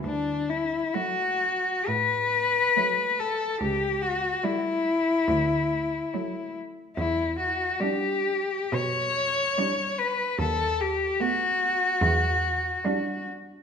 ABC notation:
X:1
M:4/4
L:1/8
Q:1/4=72
K:D
V:1 name="Cello"
D E F2 B3 A | G F E4- E z | E F G2 c3 B | A G F4- F z |]
V:2 name="Cello"
z2 A,2 z2 A,2 | z2 A,2 z2 A,2 | z2 D2 z2 D2 | z2 B,2 z2 D2 |]
V:3 name="Cello" clef=bass
z2 F,2 z2 F,2 | z2 G,2 z2 F,2 | z2 G,2 z2 G,2 | z2 A,2 z2 G,2 |]
V:4 name="Cello" clef=bass
D,,2 z2 A,,2 z2 | C,,2 z2 D,,2 z2 | E,,2 z2 B,,2 z2 | ^D,,2 z2 E,,2 z2 |]